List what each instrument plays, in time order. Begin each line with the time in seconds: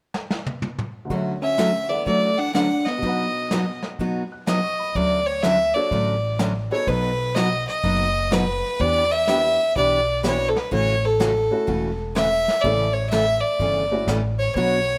0.14 snare
0.30 snare
0.46 high tom
0.62 high tom
0.79 mid tom
1.05 upright piano D2 D3
1.10 steel-string acoustic guitar D3 F#3 A3 C#4 F#4, upright piano F#4 C#5, brush sweep, kick
1.16 upright piano E5
1.42 hollow-body jazz guitar C#4, fiddle E5
1.58 steel-string acoustic guitar D3 F#3 A3 C#4 F#4, snare, hi-hat pedal
1.89 upright piano E3 A4 D5 F#5, hollow-body jazz guitar B3, fiddle D5
2.06 steel-string acoustic guitar D3 F#3 A3 C#4 F#4, hollow-body jazz guitar A3, fiddle D5, brush sweep, kick
2.38 hollow-body jazz guitar D4, fiddle F#5
2.54 steel-string acoustic guitar D3 F#3 A3 C#4 F#4, hollow-body jazz guitar D4, fiddle F#5, snare, hi-hat pedal
2.85 hollow-body jazz guitar B3, fiddle D#5, snare
2.98 upright piano B2 F#3
3.02 steel-string acoustic guitar B2 F#3 B3 D#4 F#4, upright piano D#4 B4, brush sweep, kick
3.09 upright piano F#5
3.51 steel-string acoustic guitar B2 F#3 B3 D#4 F#4, snare, hi-hat pedal
3.83 snare
3.99 steel-string acoustic guitar B2 F#3 B3 D#4 F#4, brush sweep, kick
4.32 upright piano F#6
4.47 steel-string acoustic guitar B2 F#3 B3 D#4 F#4, fiddle D#5, upright piano D#6, snare, hi-hat pedal
4.64 upright piano C#6
4.79 upright piano B5
4.95 upright bass D2, steel-string acoustic guitar D3 F#3 A3 C#4 F#4, fiddle D5, brush sweep, kick
5.26 fiddle C#5
5.42 steel-string acoustic guitar D3 F#3 A3 C#4 F#4, fiddle E5, snare, hi-hat pedal
5.74 upright piano D4 F#4 A4 C#5, fiddle D5
5.91 upright bass A1, steel-string acoustic guitar D3 F#3 A3 C#4 F#4, brush sweep, kick
6.39 steel-string acoustic guitar D3 F#3 A3 C#4 F#4, snare, hi-hat pedal
6.71 upright piano B3 D#4 F#4 A4, fiddle C#5
6.87 upright bass B1, steel-string acoustic guitar B2 F#3 B3 D#4 F#4, fiddle B4, brush sweep, kick
7.35 steel-string acoustic guitar B2 F#3 B3 D#4 F#4, fiddle D#5, snare, hi-hat pedal
7.67 fiddle D#5
7.83 upright bass F#1, steel-string acoustic guitar B2 F#3 B3 D#4 F#4, brush sweep, kick
8.31 steel-string acoustic guitar B2 F#3 B3 D#4 F#4, fiddle B4, snare, hi-hat pedal
8.79 upright bass E2, steel-string acoustic guitar E3 B3 D4 G4, fiddle D5, brush sweep, kick
9.11 fiddle E5
9.27 steel-string acoustic guitar E3 B3 D4 G4, upright piano B3 D4 E4 G4, snare, hi-hat pedal
9.76 upright bass B1, steel-string acoustic guitar E3 B3 D4 G4, fiddle D5, brush sweep, kick
10.23 steel-string acoustic guitar E3 B3 D4 G4, upright piano B3 D4 E4 F#4, fiddle C#5, snare, hi-hat pedal
10.49 fiddle A4
10.56 fiddle B4, snare
10.71 upright bass A1, steel-string acoustic guitar C#3 E3 A3 C#4 F#4, fiddle C#5, brush sweep, kick
11.05 fiddle A4
11.20 steel-string acoustic guitar C#3 E3 A3 C#4 F#4, snare, hi-hat pedal
11.51 upright piano A3 C#4 E4 F#4
11.67 upright bass E1, steel-string acoustic guitar C#3 E3 A3 C#4 F#4, brush sweep, kick
12.15 steel-string acoustic guitar C#3 E3 A3 C#4 F#4, fiddle E5, snare, hi-hat pedal
12.48 snare
12.61 upright bass A1, steel-string acoustic guitar C#3 E3 A3 C#4 A4, upright piano A3 C#4 E4 A4, fiddle D5, brush sweep, kick
12.93 fiddle C#5
13.10 steel-string acoustic guitar C#3 E3 A3 C#4 A4, fiddle E5, snare, hi-hat pedal
13.40 fiddle D5
13.59 upright bass G1, steel-string acoustic guitar C#3 E3 A3 C#4 A4, brush sweep, kick
13.91 upright piano A3 C#4 E4 F#4
14.07 upright bass A1, steel-string acoustic guitar C#3 E3 A3 C#4 A4, snare, hi-hat pedal
14.39 fiddle C#5
14.55 upright bass B1, steel-string acoustic guitar B2 F#3 B3 D4 F#4 C#5, fiddle C#5, brush sweep, kick